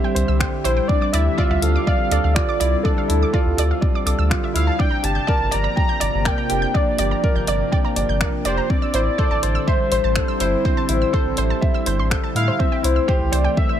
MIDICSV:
0, 0, Header, 1, 7, 480
1, 0, Start_track
1, 0, Key_signature, -1, "minor"
1, 0, Tempo, 487805
1, 880, Time_signature, 4, 2, 24, 8
1, 13578, End_track
2, 0, Start_track
2, 0, Title_t, "Synth arpeggio sound"
2, 0, Program_c, 0, 84
2, 42, Note_on_c, 0, 79, 80
2, 72, Note_off_c, 0, 79, 0
2, 277, Note_on_c, 0, 88, 72
2, 331, Note_off_c, 0, 88, 0
2, 396, Note_on_c, 0, 72, 106
2, 477, Note_off_c, 0, 72, 0
2, 634, Note_on_c, 0, 72, 106
2, 690, Note_off_c, 0, 72, 0
2, 754, Note_on_c, 0, 79, 80
2, 788, Note_off_c, 0, 79, 0
2, 1003, Note_on_c, 0, 86, 78
2, 1054, Note_off_c, 0, 86, 0
2, 1120, Note_on_c, 0, 74, 109
2, 1200, Note_off_c, 0, 74, 0
2, 1365, Note_on_c, 0, 74, 107
2, 1415, Note_off_c, 0, 74, 0
2, 1483, Note_on_c, 0, 77, 81
2, 1513, Note_off_c, 0, 77, 0
2, 1728, Note_on_c, 0, 86, 77
2, 1777, Note_off_c, 0, 86, 0
2, 1843, Note_on_c, 0, 74, 102
2, 1921, Note_off_c, 0, 74, 0
2, 2087, Note_on_c, 0, 74, 88
2, 2136, Note_off_c, 0, 74, 0
2, 2205, Note_on_c, 0, 77, 73
2, 2234, Note_off_c, 0, 77, 0
2, 2447, Note_on_c, 0, 86, 84
2, 2496, Note_off_c, 0, 86, 0
2, 2560, Note_on_c, 0, 74, 100
2, 2639, Note_off_c, 0, 74, 0
2, 2806, Note_on_c, 0, 74, 97
2, 2856, Note_off_c, 0, 74, 0
2, 2932, Note_on_c, 0, 77, 74
2, 2957, Note_off_c, 0, 77, 0
2, 3174, Note_on_c, 0, 86, 76
2, 3220, Note_off_c, 0, 86, 0
2, 3289, Note_on_c, 0, 74, 96
2, 3364, Note_off_c, 0, 74, 0
2, 3532, Note_on_c, 0, 74, 105
2, 3579, Note_off_c, 0, 74, 0
2, 3649, Note_on_c, 0, 77, 82
2, 3676, Note_off_c, 0, 77, 0
2, 3890, Note_on_c, 0, 86, 83
2, 3938, Note_off_c, 0, 86, 0
2, 4000, Note_on_c, 0, 86, 84
2, 4053, Note_off_c, 0, 86, 0
2, 4119, Note_on_c, 0, 88, 99
2, 4199, Note_off_c, 0, 88, 0
2, 4248, Note_on_c, 0, 74, 84
2, 4276, Note_off_c, 0, 74, 0
2, 4367, Note_on_c, 0, 76, 82
2, 4395, Note_off_c, 0, 76, 0
2, 4482, Note_on_c, 0, 88, 72
2, 4513, Note_off_c, 0, 88, 0
2, 4596, Note_on_c, 0, 81, 75
2, 4677, Note_off_c, 0, 81, 0
2, 4714, Note_on_c, 0, 74, 98
2, 4770, Note_off_c, 0, 74, 0
2, 4826, Note_on_c, 0, 82, 73
2, 4864, Note_off_c, 0, 82, 0
2, 5069, Note_on_c, 0, 91, 75
2, 5127, Note_off_c, 0, 91, 0
2, 5188, Note_on_c, 0, 74, 104
2, 5274, Note_off_c, 0, 74, 0
2, 5425, Note_on_c, 0, 74, 98
2, 5485, Note_off_c, 0, 74, 0
2, 5549, Note_on_c, 0, 82, 84
2, 5586, Note_off_c, 0, 82, 0
2, 5795, Note_on_c, 0, 91, 79
2, 5851, Note_off_c, 0, 91, 0
2, 5906, Note_on_c, 0, 74, 88
2, 5993, Note_off_c, 0, 74, 0
2, 6153, Note_on_c, 0, 74, 103
2, 6209, Note_off_c, 0, 74, 0
2, 6276, Note_on_c, 0, 82, 81
2, 6310, Note_off_c, 0, 82, 0
2, 6514, Note_on_c, 0, 91, 79
2, 6570, Note_off_c, 0, 91, 0
2, 6636, Note_on_c, 0, 74, 98
2, 6717, Note_off_c, 0, 74, 0
2, 6876, Note_on_c, 0, 74, 116
2, 6931, Note_off_c, 0, 74, 0
2, 6999, Note_on_c, 0, 82, 78
2, 7031, Note_off_c, 0, 82, 0
2, 7238, Note_on_c, 0, 91, 72
2, 7292, Note_off_c, 0, 91, 0
2, 7362, Note_on_c, 0, 74, 105
2, 7440, Note_off_c, 0, 74, 0
2, 7600, Note_on_c, 0, 74, 106
2, 7653, Note_off_c, 0, 74, 0
2, 7720, Note_on_c, 0, 82, 83
2, 7751, Note_off_c, 0, 82, 0
2, 7962, Note_on_c, 0, 91, 78
2, 8014, Note_off_c, 0, 91, 0
2, 8079, Note_on_c, 0, 74, 100
2, 8159, Note_off_c, 0, 74, 0
2, 8317, Note_on_c, 0, 74, 103
2, 8371, Note_off_c, 0, 74, 0
2, 8436, Note_on_c, 0, 82, 81
2, 8470, Note_off_c, 0, 82, 0
2, 8680, Note_on_c, 0, 88, 79
2, 8733, Note_off_c, 0, 88, 0
2, 8801, Note_on_c, 0, 72, 110
2, 8880, Note_off_c, 0, 72, 0
2, 9035, Note_on_c, 0, 72, 99
2, 9090, Note_off_c, 0, 72, 0
2, 9160, Note_on_c, 0, 81, 79
2, 9191, Note_off_c, 0, 81, 0
2, 9397, Note_on_c, 0, 88, 82
2, 9451, Note_off_c, 0, 88, 0
2, 9522, Note_on_c, 0, 72, 99
2, 9600, Note_off_c, 0, 72, 0
2, 9758, Note_on_c, 0, 72, 91
2, 9812, Note_off_c, 0, 72, 0
2, 9879, Note_on_c, 0, 81, 74
2, 9911, Note_off_c, 0, 81, 0
2, 10118, Note_on_c, 0, 88, 80
2, 10172, Note_off_c, 0, 88, 0
2, 10240, Note_on_c, 0, 72, 100
2, 10319, Note_off_c, 0, 72, 0
2, 10482, Note_on_c, 0, 72, 98
2, 10534, Note_off_c, 0, 72, 0
2, 10599, Note_on_c, 0, 81, 78
2, 10631, Note_off_c, 0, 81, 0
2, 10840, Note_on_c, 0, 88, 71
2, 10893, Note_off_c, 0, 88, 0
2, 10957, Note_on_c, 0, 72, 104
2, 11038, Note_off_c, 0, 72, 0
2, 11197, Note_on_c, 0, 72, 100
2, 11251, Note_off_c, 0, 72, 0
2, 11320, Note_on_c, 0, 81, 77
2, 11351, Note_off_c, 0, 81, 0
2, 11556, Note_on_c, 0, 88, 77
2, 11611, Note_off_c, 0, 88, 0
2, 11681, Note_on_c, 0, 91, 68
2, 11760, Note_off_c, 0, 91, 0
2, 11802, Note_on_c, 0, 84, 78
2, 11854, Note_off_c, 0, 84, 0
2, 11918, Note_on_c, 0, 91, 86
2, 11950, Note_off_c, 0, 91, 0
2, 12040, Note_on_c, 0, 81, 79
2, 12093, Note_off_c, 0, 81, 0
2, 12279, Note_on_c, 0, 72, 80
2, 12332, Note_off_c, 0, 72, 0
2, 12392, Note_on_c, 0, 72, 94
2, 12449, Note_off_c, 0, 72, 0
2, 12517, Note_on_c, 0, 79, 81
2, 12550, Note_off_c, 0, 79, 0
2, 12753, Note_on_c, 0, 88, 77
2, 12809, Note_off_c, 0, 88, 0
2, 12871, Note_on_c, 0, 72, 103
2, 12955, Note_off_c, 0, 72, 0
2, 13111, Note_on_c, 0, 72, 95
2, 13168, Note_off_c, 0, 72, 0
2, 13229, Note_on_c, 0, 79, 85
2, 13266, Note_off_c, 0, 79, 0
2, 13474, Note_on_c, 0, 88, 76
2, 13530, Note_off_c, 0, 88, 0
2, 13578, End_track
3, 0, Start_track
3, 0, Title_t, "Soft synth lead"
3, 0, Program_c, 1, 80
3, 0, Note_on_c, 1, 67, 90
3, 150, Note_off_c, 1, 67, 0
3, 639, Note_on_c, 1, 72, 98
3, 864, Note_on_c, 1, 74, 111
3, 879, Note_off_c, 1, 72, 0
3, 1109, Note_on_c, 1, 76, 106
3, 1124, Note_off_c, 1, 74, 0
3, 1592, Note_on_c, 1, 77, 115
3, 1607, Note_off_c, 1, 76, 0
3, 2305, Note_on_c, 1, 74, 109
3, 2320, Note_off_c, 1, 77, 0
3, 2786, Note_on_c, 1, 69, 94
3, 2801, Note_off_c, 1, 74, 0
3, 3753, Note_off_c, 1, 69, 0
3, 4480, Note_on_c, 1, 77, 99
3, 4730, Note_on_c, 1, 79, 114
3, 4745, Note_off_c, 1, 77, 0
3, 4961, Note_on_c, 1, 81, 108
3, 4975, Note_off_c, 1, 79, 0
3, 5443, Note_on_c, 1, 82, 111
3, 5458, Note_off_c, 1, 81, 0
3, 6171, Note_on_c, 1, 79, 99
3, 6186, Note_off_c, 1, 82, 0
3, 6650, Note_on_c, 1, 74, 90
3, 6665, Note_off_c, 1, 79, 0
3, 7605, Note_off_c, 1, 74, 0
3, 8325, Note_on_c, 1, 72, 105
3, 8559, Note_on_c, 1, 74, 127
3, 8574, Note_off_c, 1, 72, 0
3, 9522, Note_on_c, 1, 72, 108
3, 9537, Note_off_c, 1, 74, 0
3, 11921, Note_off_c, 1, 72, 0
3, 12160, Note_on_c, 1, 77, 114
3, 12395, Note_on_c, 1, 76, 118
3, 12410, Note_off_c, 1, 77, 0
3, 12642, Note_on_c, 1, 72, 105
3, 12657, Note_off_c, 1, 76, 0
3, 13129, Note_on_c, 1, 74, 93
3, 13144, Note_off_c, 1, 72, 0
3, 13364, Note_off_c, 1, 74, 0
3, 13373, Note_on_c, 1, 76, 100
3, 13578, Note_off_c, 1, 76, 0
3, 13578, End_track
4, 0, Start_track
4, 0, Title_t, "Grand piano"
4, 0, Program_c, 2, 0
4, 0, Control_c, 2, 64, 127
4, 0, Note_on_c, 2, 60, 75
4, 0, Note_on_c, 2, 64, 78
4, 0, Note_on_c, 2, 67, 97
4, 0, Note_on_c, 2, 72, 80
4, 0, Note_on_c, 2, 76, 83
4, 141, Note_off_c, 2, 76, 0
4, 145, Note_off_c, 2, 72, 0
4, 145, Note_on_c, 2, 72, 82
4, 289, Note_off_c, 2, 72, 0
4, 389, Note_off_c, 2, 67, 0
4, 389, Note_on_c, 2, 67, 77
4, 622, Note_off_c, 2, 67, 0
4, 631, Note_off_c, 2, 64, 0
4, 631, Note_on_c, 2, 64, 81
4, 772, Note_off_c, 2, 64, 0
4, 872, Note_on_c, 2, 62, 76
4, 892, Control_c, 2, 64, 0
4, 899, Note_off_c, 2, 60, 0
4, 1089, Control_c, 2, 64, 127
4, 1104, Note_off_c, 2, 62, 0
4, 1108, Note_on_c, 2, 64, 76
4, 1342, Note_off_c, 2, 64, 0
4, 1354, Note_on_c, 2, 65, 101
4, 1585, Note_off_c, 2, 65, 0
4, 1594, Note_on_c, 2, 69, 80
4, 1825, Note_off_c, 2, 69, 0
4, 1839, Note_on_c, 2, 74, 84
4, 2067, Note_off_c, 2, 74, 0
4, 2080, Note_on_c, 2, 69, 82
4, 2216, Note_off_c, 2, 69, 0
4, 2316, Note_on_c, 2, 65, 79
4, 2546, Note_off_c, 2, 65, 0
4, 2557, Note_on_c, 2, 64, 74
4, 2695, Note_off_c, 2, 64, 0
4, 2793, Note_on_c, 2, 62, 77
4, 3024, Note_off_c, 2, 62, 0
4, 3029, Note_on_c, 2, 64, 73
4, 3262, Note_off_c, 2, 64, 0
4, 3279, Note_on_c, 2, 65, 100
4, 3507, Note_off_c, 2, 65, 0
4, 3516, Note_on_c, 2, 69, 73
4, 3654, Note_off_c, 2, 69, 0
4, 3751, Note_on_c, 2, 74, 77
4, 3983, Note_off_c, 2, 74, 0
4, 3996, Note_on_c, 2, 69, 77
4, 4134, Note_off_c, 2, 69, 0
4, 4226, Note_on_c, 2, 65, 74
4, 4461, Note_off_c, 2, 65, 0
4, 4465, Note_on_c, 2, 64, 76
4, 4609, Note_off_c, 2, 64, 0
4, 4709, Note_on_c, 2, 62, 70
4, 4730, Control_c, 2, 64, 0
4, 4931, Control_c, 2, 64, 127
4, 4942, Note_off_c, 2, 62, 0
4, 4951, Note_on_c, 2, 67, 74
4, 5183, Note_off_c, 2, 67, 0
4, 5198, Note_on_c, 2, 70, 96
4, 5427, Note_off_c, 2, 70, 0
4, 5432, Note_on_c, 2, 74, 78
4, 5664, Note_off_c, 2, 74, 0
4, 5669, Note_on_c, 2, 79, 80
4, 5902, Note_off_c, 2, 79, 0
4, 5911, Note_on_c, 2, 74, 83
4, 6052, Note_off_c, 2, 74, 0
4, 6155, Note_on_c, 2, 70, 69
4, 6385, Note_off_c, 2, 70, 0
4, 6391, Note_on_c, 2, 67, 75
4, 6532, Note_off_c, 2, 67, 0
4, 6636, Note_on_c, 2, 62, 72
4, 6866, Note_off_c, 2, 62, 0
4, 6882, Note_on_c, 2, 67, 74
4, 7109, Note_off_c, 2, 67, 0
4, 7120, Note_on_c, 2, 70, 97
4, 7348, Note_off_c, 2, 70, 0
4, 7357, Note_on_c, 2, 74, 82
4, 7495, Note_off_c, 2, 74, 0
4, 7594, Note_on_c, 2, 79, 84
4, 7825, Note_off_c, 2, 79, 0
4, 7834, Note_on_c, 2, 74, 77
4, 7974, Note_off_c, 2, 74, 0
4, 8078, Note_on_c, 2, 70, 75
4, 8307, Note_off_c, 2, 70, 0
4, 8326, Note_on_c, 2, 67, 78
4, 8459, Note_off_c, 2, 67, 0
4, 8560, Note_on_c, 2, 60, 76
4, 8571, Control_c, 2, 64, 0
4, 8756, Control_c, 2, 64, 127
4, 8788, Note_off_c, 2, 60, 0
4, 8793, Note_on_c, 2, 64, 77
4, 9024, Note_off_c, 2, 64, 0
4, 9040, Note_on_c, 2, 69, 99
4, 9268, Note_off_c, 2, 69, 0
4, 9276, Note_on_c, 2, 72, 79
4, 9506, Note_off_c, 2, 72, 0
4, 9518, Note_on_c, 2, 76, 85
4, 9747, Note_off_c, 2, 76, 0
4, 9758, Note_on_c, 2, 72, 82
4, 9895, Note_off_c, 2, 72, 0
4, 10001, Note_on_c, 2, 69, 78
4, 10228, Note_off_c, 2, 69, 0
4, 10237, Note_on_c, 2, 64, 79
4, 10375, Note_off_c, 2, 64, 0
4, 10482, Note_on_c, 2, 60, 77
4, 10708, Note_off_c, 2, 60, 0
4, 10715, Note_on_c, 2, 64, 76
4, 10945, Note_off_c, 2, 64, 0
4, 10953, Note_on_c, 2, 69, 99
4, 11184, Note_off_c, 2, 69, 0
4, 11197, Note_on_c, 2, 72, 75
4, 11335, Note_off_c, 2, 72, 0
4, 11427, Note_on_c, 2, 76, 81
4, 11661, Note_off_c, 2, 76, 0
4, 11673, Note_on_c, 2, 72, 75
4, 11813, Note_off_c, 2, 72, 0
4, 11908, Note_on_c, 2, 69, 70
4, 12141, Note_off_c, 2, 69, 0
4, 12159, Note_on_c, 2, 64, 80
4, 12296, Note_off_c, 2, 64, 0
4, 12396, Note_on_c, 2, 60, 76
4, 12413, Control_c, 2, 64, 0
4, 12559, Control_c, 2, 64, 127
4, 12624, Note_on_c, 2, 64, 79
4, 12626, Note_off_c, 2, 60, 0
4, 12859, Note_off_c, 2, 64, 0
4, 12870, Note_on_c, 2, 67, 100
4, 13103, Note_off_c, 2, 67, 0
4, 13105, Note_on_c, 2, 72, 76
4, 13340, Note_off_c, 2, 72, 0
4, 13354, Note_on_c, 2, 76, 85
4, 13578, Note_off_c, 2, 76, 0
4, 13578, End_track
5, 0, Start_track
5, 0, Title_t, "Analog synth pad"
5, 0, Program_c, 3, 89
5, 0, Note_on_c, 3, 50, 96
5, 0, Note_on_c, 3, 55, 94
5, 0, Note_on_c, 3, 60, 79
5, 0, Note_on_c, 3, 64, 83
5, 880, Note_off_c, 3, 64, 0
5, 4717, Note_off_c, 3, 55, 0
5, 4719, Note_off_c, 3, 50, 0
5, 4723, Note_on_c, 3, 48, 74
5, 4897, Note_on_c, 3, 53, 74
5, 5282, Note_on_c, 3, 58, 88
5, 5647, Note_on_c, 3, 62, 86
5, 6253, Note_off_c, 3, 60, 0
5, 8560, Note_off_c, 3, 58, 0
5, 8560, Note_on_c, 3, 50, 85
5, 8561, Note_off_c, 3, 48, 0
5, 8562, Note_off_c, 3, 53, 0
5, 8915, Note_on_c, 3, 55, 89
5, 8961, Note_on_c, 3, 60, 86
5, 9573, Note_off_c, 3, 62, 0
5, 9688, Note_on_c, 3, 64, 84
5, 12398, Note_off_c, 3, 55, 0
5, 12399, Note_off_c, 3, 50, 0
5, 12399, Note_on_c, 3, 52, 80
5, 12508, Note_on_c, 3, 57, 77
5, 13101, Note_on_c, 3, 62, 81
5, 13428, Note_on_c, 3, 67, 91
5, 13578, Note_off_c, 3, 52, 0
5, 13578, Note_off_c, 3, 57, 0
5, 13578, Note_off_c, 3, 60, 0
5, 13578, Note_off_c, 3, 62, 0
5, 13578, Note_off_c, 3, 64, 0
5, 13578, Note_off_c, 3, 67, 0
5, 13578, End_track
6, 0, Start_track
6, 0, Title_t, "Sub bass"
6, 0, Program_c, 4, 38
6, 151, Note_on_c, 4, 36, 95
6, 227, Note_off_c, 4, 36, 0
6, 276, Note_on_c, 4, 36, 105
6, 422, Note_off_c, 4, 36, 0
6, 635, Note_on_c, 4, 34, 91
6, 782, Note_off_c, 4, 34, 0
6, 1115, Note_on_c, 4, 38, 97
6, 1261, Note_off_c, 4, 38, 0
6, 1476, Note_on_c, 4, 38, 82
6, 1550, Note_off_c, 4, 38, 0
6, 1595, Note_on_c, 4, 38, 97
6, 1741, Note_off_c, 4, 38, 0
6, 2076, Note_on_c, 4, 38, 98
6, 2150, Note_off_c, 4, 38, 0
6, 2203, Note_on_c, 4, 38, 106
6, 2345, Note_off_c, 4, 38, 0
6, 2561, Note_on_c, 4, 36, 81
6, 2705, Note_off_c, 4, 36, 0
6, 3044, Note_on_c, 4, 38, 99
6, 3186, Note_off_c, 4, 38, 0
6, 3402, Note_on_c, 4, 38, 88
6, 3473, Note_off_c, 4, 38, 0
6, 3514, Note_on_c, 4, 38, 94
6, 3661, Note_off_c, 4, 38, 0
6, 3992, Note_on_c, 4, 36, 98
6, 4068, Note_off_c, 4, 36, 0
6, 4118, Note_on_c, 4, 38, 92
6, 4263, Note_off_c, 4, 38, 0
6, 4477, Note_on_c, 4, 38, 76
6, 4622, Note_off_c, 4, 38, 0
6, 4955, Note_on_c, 4, 31, 97
6, 5101, Note_off_c, 4, 31, 0
6, 5320, Note_on_c, 4, 31, 87
6, 5392, Note_off_c, 4, 31, 0
6, 5444, Note_on_c, 4, 31, 94
6, 5586, Note_off_c, 4, 31, 0
6, 5918, Note_on_c, 4, 31, 94
6, 5991, Note_off_c, 4, 31, 0
6, 6045, Note_on_c, 4, 31, 102
6, 6186, Note_off_c, 4, 31, 0
6, 6402, Note_on_c, 4, 29, 84
6, 6545, Note_off_c, 4, 29, 0
6, 6877, Note_on_c, 4, 31, 95
6, 7022, Note_off_c, 4, 31, 0
6, 7233, Note_on_c, 4, 31, 84
6, 7308, Note_off_c, 4, 31, 0
6, 7354, Note_on_c, 4, 31, 91
6, 7501, Note_off_c, 4, 31, 0
6, 7832, Note_on_c, 4, 31, 93
6, 7908, Note_off_c, 4, 31, 0
6, 7956, Note_on_c, 4, 31, 108
6, 8102, Note_off_c, 4, 31, 0
6, 8310, Note_on_c, 4, 29, 88
6, 8459, Note_off_c, 4, 29, 0
6, 8792, Note_on_c, 4, 33, 97
6, 8940, Note_off_c, 4, 33, 0
6, 9158, Note_on_c, 4, 33, 86
6, 9231, Note_off_c, 4, 33, 0
6, 9279, Note_on_c, 4, 33, 92
6, 9424, Note_off_c, 4, 33, 0
6, 9754, Note_on_c, 4, 33, 95
6, 9829, Note_off_c, 4, 33, 0
6, 9877, Note_on_c, 4, 33, 102
6, 10022, Note_off_c, 4, 33, 0
6, 10234, Note_on_c, 4, 31, 86
6, 10381, Note_off_c, 4, 31, 0
6, 10716, Note_on_c, 4, 33, 106
6, 10862, Note_off_c, 4, 33, 0
6, 11081, Note_on_c, 4, 33, 86
6, 11152, Note_off_c, 4, 33, 0
6, 11194, Note_on_c, 4, 33, 91
6, 11341, Note_off_c, 4, 33, 0
6, 11674, Note_on_c, 4, 31, 101
6, 11795, Note_on_c, 4, 33, 112
6, 11810, Note_off_c, 4, 31, 0
6, 11941, Note_off_c, 4, 33, 0
6, 12151, Note_on_c, 4, 45, 101
6, 12299, Note_off_c, 4, 45, 0
6, 12632, Note_on_c, 4, 36, 96
6, 12780, Note_off_c, 4, 36, 0
6, 12987, Note_on_c, 4, 36, 88
6, 13065, Note_off_c, 4, 36, 0
6, 13109, Note_on_c, 4, 36, 96
6, 13258, Note_off_c, 4, 36, 0
6, 13578, End_track
7, 0, Start_track
7, 0, Title_t, "Drums"
7, 161, Note_on_c, 9, 42, 61
7, 259, Note_off_c, 9, 42, 0
7, 398, Note_on_c, 9, 36, 106
7, 399, Note_on_c, 9, 26, 80
7, 496, Note_off_c, 9, 36, 0
7, 497, Note_off_c, 9, 26, 0
7, 641, Note_on_c, 9, 42, 62
7, 739, Note_off_c, 9, 42, 0
7, 878, Note_on_c, 9, 36, 115
7, 977, Note_off_c, 9, 36, 0
7, 1118, Note_on_c, 9, 42, 71
7, 1216, Note_off_c, 9, 42, 0
7, 1360, Note_on_c, 9, 36, 108
7, 1459, Note_off_c, 9, 36, 0
7, 1598, Note_on_c, 9, 42, 70
7, 1697, Note_off_c, 9, 42, 0
7, 1842, Note_on_c, 9, 36, 109
7, 1941, Note_off_c, 9, 36, 0
7, 2081, Note_on_c, 9, 42, 66
7, 2179, Note_off_c, 9, 42, 0
7, 2323, Note_on_c, 9, 26, 76
7, 2324, Note_on_c, 9, 36, 112
7, 2422, Note_off_c, 9, 26, 0
7, 2422, Note_off_c, 9, 36, 0
7, 2566, Note_on_c, 9, 42, 66
7, 2664, Note_off_c, 9, 42, 0
7, 2803, Note_on_c, 9, 36, 109
7, 2902, Note_off_c, 9, 36, 0
7, 3048, Note_on_c, 9, 42, 66
7, 3146, Note_off_c, 9, 42, 0
7, 3283, Note_on_c, 9, 36, 114
7, 3381, Note_off_c, 9, 36, 0
7, 3527, Note_on_c, 9, 42, 66
7, 3625, Note_off_c, 9, 42, 0
7, 3761, Note_on_c, 9, 36, 118
7, 3860, Note_off_c, 9, 36, 0
7, 4002, Note_on_c, 9, 42, 65
7, 4101, Note_off_c, 9, 42, 0
7, 4242, Note_on_c, 9, 26, 71
7, 4242, Note_on_c, 9, 36, 113
7, 4340, Note_off_c, 9, 26, 0
7, 4340, Note_off_c, 9, 36, 0
7, 4483, Note_on_c, 9, 42, 61
7, 4581, Note_off_c, 9, 42, 0
7, 4719, Note_on_c, 9, 36, 111
7, 4818, Note_off_c, 9, 36, 0
7, 4957, Note_on_c, 9, 42, 62
7, 5056, Note_off_c, 9, 42, 0
7, 5199, Note_on_c, 9, 36, 104
7, 5298, Note_off_c, 9, 36, 0
7, 5432, Note_on_c, 9, 42, 60
7, 5531, Note_off_c, 9, 42, 0
7, 5679, Note_on_c, 9, 36, 107
7, 5778, Note_off_c, 9, 36, 0
7, 5915, Note_on_c, 9, 42, 64
7, 6013, Note_off_c, 9, 42, 0
7, 6154, Note_on_c, 9, 26, 67
7, 6158, Note_on_c, 9, 36, 104
7, 6252, Note_off_c, 9, 26, 0
7, 6257, Note_off_c, 9, 36, 0
7, 6393, Note_on_c, 9, 42, 59
7, 6491, Note_off_c, 9, 42, 0
7, 6640, Note_on_c, 9, 36, 106
7, 6738, Note_off_c, 9, 36, 0
7, 6873, Note_on_c, 9, 42, 63
7, 6972, Note_off_c, 9, 42, 0
7, 7121, Note_on_c, 9, 36, 105
7, 7219, Note_off_c, 9, 36, 0
7, 7355, Note_on_c, 9, 42, 61
7, 7453, Note_off_c, 9, 42, 0
7, 7602, Note_on_c, 9, 36, 103
7, 7700, Note_off_c, 9, 36, 0
7, 7837, Note_on_c, 9, 42, 62
7, 7935, Note_off_c, 9, 42, 0
7, 8075, Note_on_c, 9, 26, 74
7, 8081, Note_on_c, 9, 36, 101
7, 8174, Note_off_c, 9, 26, 0
7, 8179, Note_off_c, 9, 36, 0
7, 8316, Note_on_c, 9, 42, 60
7, 8414, Note_off_c, 9, 42, 0
7, 8560, Note_on_c, 9, 36, 101
7, 8659, Note_off_c, 9, 36, 0
7, 8794, Note_on_c, 9, 42, 61
7, 8893, Note_off_c, 9, 42, 0
7, 9041, Note_on_c, 9, 36, 103
7, 9139, Note_off_c, 9, 36, 0
7, 9279, Note_on_c, 9, 42, 57
7, 9377, Note_off_c, 9, 42, 0
7, 9522, Note_on_c, 9, 36, 106
7, 9620, Note_off_c, 9, 36, 0
7, 9758, Note_on_c, 9, 42, 58
7, 9856, Note_off_c, 9, 42, 0
7, 9993, Note_on_c, 9, 26, 73
7, 10002, Note_on_c, 9, 36, 102
7, 10091, Note_off_c, 9, 26, 0
7, 10100, Note_off_c, 9, 36, 0
7, 10236, Note_on_c, 9, 42, 59
7, 10335, Note_off_c, 9, 42, 0
7, 10480, Note_on_c, 9, 36, 106
7, 10578, Note_off_c, 9, 36, 0
7, 10714, Note_on_c, 9, 42, 67
7, 10812, Note_off_c, 9, 42, 0
7, 10959, Note_on_c, 9, 36, 105
7, 11057, Note_off_c, 9, 36, 0
7, 11188, Note_on_c, 9, 42, 58
7, 11287, Note_off_c, 9, 42, 0
7, 11438, Note_on_c, 9, 36, 104
7, 11536, Note_off_c, 9, 36, 0
7, 11673, Note_on_c, 9, 42, 61
7, 11772, Note_off_c, 9, 42, 0
7, 11919, Note_on_c, 9, 26, 74
7, 11919, Note_on_c, 9, 36, 105
7, 12017, Note_off_c, 9, 36, 0
7, 12018, Note_off_c, 9, 26, 0
7, 12162, Note_on_c, 9, 42, 54
7, 12260, Note_off_c, 9, 42, 0
7, 12397, Note_on_c, 9, 36, 100
7, 12496, Note_off_c, 9, 36, 0
7, 12638, Note_on_c, 9, 42, 70
7, 12737, Note_off_c, 9, 42, 0
7, 12877, Note_on_c, 9, 36, 114
7, 12975, Note_off_c, 9, 36, 0
7, 13114, Note_on_c, 9, 42, 65
7, 13212, Note_off_c, 9, 42, 0
7, 13356, Note_on_c, 9, 36, 112
7, 13454, Note_off_c, 9, 36, 0
7, 13578, End_track
0, 0, End_of_file